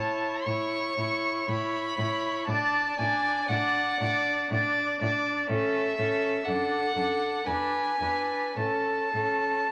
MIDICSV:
0, 0, Header, 1, 5, 480
1, 0, Start_track
1, 0, Key_signature, 3, "major"
1, 0, Tempo, 1015228
1, 1179, Time_signature, 3, 2, 24, 8
1, 2136, Tempo, 983607
1, 3576, Tempo, 1121495
1, 4538, End_track
2, 0, Start_track
2, 0, Title_t, "Violin"
2, 0, Program_c, 0, 40
2, 0, Note_on_c, 0, 81, 66
2, 213, Note_on_c, 0, 85, 71
2, 220, Note_off_c, 0, 81, 0
2, 700, Note_on_c, 0, 83, 71
2, 707, Note_off_c, 0, 85, 0
2, 1166, Note_off_c, 0, 83, 0
2, 1169, Note_on_c, 0, 81, 80
2, 1406, Note_on_c, 0, 80, 83
2, 1413, Note_off_c, 0, 81, 0
2, 1648, Note_on_c, 0, 78, 78
2, 1655, Note_off_c, 0, 80, 0
2, 2131, Note_off_c, 0, 78, 0
2, 2607, Note_on_c, 0, 76, 80
2, 3078, Note_on_c, 0, 78, 79
2, 3085, Note_off_c, 0, 76, 0
2, 3573, Note_on_c, 0, 80, 70
2, 3580, Note_off_c, 0, 78, 0
2, 4047, Note_on_c, 0, 81, 64
2, 4054, Note_off_c, 0, 80, 0
2, 4538, Note_off_c, 0, 81, 0
2, 4538, End_track
3, 0, Start_track
3, 0, Title_t, "Violin"
3, 0, Program_c, 1, 40
3, 0, Note_on_c, 1, 73, 39
3, 213, Note_off_c, 1, 73, 0
3, 220, Note_on_c, 1, 73, 38
3, 455, Note_off_c, 1, 73, 0
3, 458, Note_on_c, 1, 73, 45
3, 696, Note_off_c, 1, 73, 0
3, 704, Note_on_c, 1, 73, 44
3, 937, Note_off_c, 1, 73, 0
3, 939, Note_on_c, 1, 73, 45
3, 1173, Note_off_c, 1, 73, 0
3, 1184, Note_on_c, 1, 74, 53
3, 1414, Note_off_c, 1, 74, 0
3, 1416, Note_on_c, 1, 74, 50
3, 1649, Note_off_c, 1, 74, 0
3, 1651, Note_on_c, 1, 74, 50
3, 1889, Note_off_c, 1, 74, 0
3, 1895, Note_on_c, 1, 74, 55
3, 2129, Note_off_c, 1, 74, 0
3, 2137, Note_on_c, 1, 74, 55
3, 2373, Note_off_c, 1, 74, 0
3, 2379, Note_on_c, 1, 74, 51
3, 2611, Note_off_c, 1, 74, 0
3, 2617, Note_on_c, 1, 69, 53
3, 2846, Note_off_c, 1, 69, 0
3, 2850, Note_on_c, 1, 69, 51
3, 3079, Note_off_c, 1, 69, 0
3, 3088, Note_on_c, 1, 69, 44
3, 3321, Note_off_c, 1, 69, 0
3, 3324, Note_on_c, 1, 69, 50
3, 3570, Note_off_c, 1, 69, 0
3, 3575, Note_on_c, 1, 71, 43
3, 3802, Note_off_c, 1, 71, 0
3, 3812, Note_on_c, 1, 71, 34
3, 4045, Note_off_c, 1, 71, 0
3, 4048, Note_on_c, 1, 69, 34
3, 4282, Note_off_c, 1, 69, 0
3, 4285, Note_on_c, 1, 69, 34
3, 4526, Note_off_c, 1, 69, 0
3, 4538, End_track
4, 0, Start_track
4, 0, Title_t, "Viola"
4, 0, Program_c, 2, 41
4, 0, Note_on_c, 2, 64, 40
4, 215, Note_off_c, 2, 64, 0
4, 222, Note_on_c, 2, 64, 41
4, 459, Note_off_c, 2, 64, 0
4, 463, Note_on_c, 2, 64, 41
4, 698, Note_off_c, 2, 64, 0
4, 701, Note_on_c, 2, 64, 46
4, 935, Note_off_c, 2, 64, 0
4, 938, Note_on_c, 2, 64, 47
4, 1173, Note_off_c, 2, 64, 0
4, 1176, Note_on_c, 2, 62, 54
4, 1410, Note_off_c, 2, 62, 0
4, 1415, Note_on_c, 2, 62, 57
4, 1649, Note_off_c, 2, 62, 0
4, 1656, Note_on_c, 2, 62, 53
4, 1888, Note_off_c, 2, 62, 0
4, 1891, Note_on_c, 2, 62, 50
4, 2127, Note_off_c, 2, 62, 0
4, 2133, Note_on_c, 2, 62, 55
4, 2371, Note_off_c, 2, 62, 0
4, 2373, Note_on_c, 2, 62, 54
4, 2608, Note_off_c, 2, 62, 0
4, 2614, Note_on_c, 2, 61, 57
4, 2843, Note_off_c, 2, 61, 0
4, 2846, Note_on_c, 2, 61, 51
4, 3077, Note_off_c, 2, 61, 0
4, 3082, Note_on_c, 2, 62, 46
4, 3318, Note_off_c, 2, 62, 0
4, 3323, Note_on_c, 2, 62, 46
4, 3569, Note_off_c, 2, 62, 0
4, 3574, Note_on_c, 2, 62, 47
4, 3801, Note_off_c, 2, 62, 0
4, 3806, Note_on_c, 2, 62, 36
4, 4042, Note_off_c, 2, 62, 0
4, 4047, Note_on_c, 2, 61, 37
4, 4287, Note_off_c, 2, 61, 0
4, 4295, Note_on_c, 2, 61, 37
4, 4531, Note_off_c, 2, 61, 0
4, 4538, End_track
5, 0, Start_track
5, 0, Title_t, "Cello"
5, 0, Program_c, 3, 42
5, 219, Note_on_c, 3, 45, 43
5, 257, Note_off_c, 3, 45, 0
5, 460, Note_on_c, 3, 45, 40
5, 498, Note_off_c, 3, 45, 0
5, 700, Note_on_c, 3, 45, 48
5, 738, Note_off_c, 3, 45, 0
5, 937, Note_on_c, 3, 45, 54
5, 975, Note_off_c, 3, 45, 0
5, 1170, Note_on_c, 3, 45, 55
5, 1208, Note_off_c, 3, 45, 0
5, 1413, Note_on_c, 3, 45, 52
5, 1451, Note_off_c, 3, 45, 0
5, 1651, Note_on_c, 3, 45, 56
5, 1689, Note_off_c, 3, 45, 0
5, 1895, Note_on_c, 3, 45, 55
5, 1932, Note_off_c, 3, 45, 0
5, 2131, Note_on_c, 3, 45, 60
5, 2170, Note_off_c, 3, 45, 0
5, 2376, Note_on_c, 3, 45, 57
5, 2415, Note_off_c, 3, 45, 0
5, 2612, Note_on_c, 3, 45, 61
5, 2651, Note_off_c, 3, 45, 0
5, 2851, Note_on_c, 3, 45, 52
5, 2891, Note_off_c, 3, 45, 0
5, 3089, Note_on_c, 3, 42, 51
5, 3128, Note_off_c, 3, 42, 0
5, 3323, Note_on_c, 3, 42, 47
5, 3362, Note_off_c, 3, 42, 0
5, 3575, Note_on_c, 3, 40, 43
5, 3609, Note_off_c, 3, 40, 0
5, 3806, Note_on_c, 3, 40, 42
5, 3841, Note_off_c, 3, 40, 0
5, 4045, Note_on_c, 3, 45, 41
5, 4080, Note_off_c, 3, 45, 0
5, 4290, Note_on_c, 3, 45, 32
5, 4324, Note_off_c, 3, 45, 0
5, 4538, End_track
0, 0, End_of_file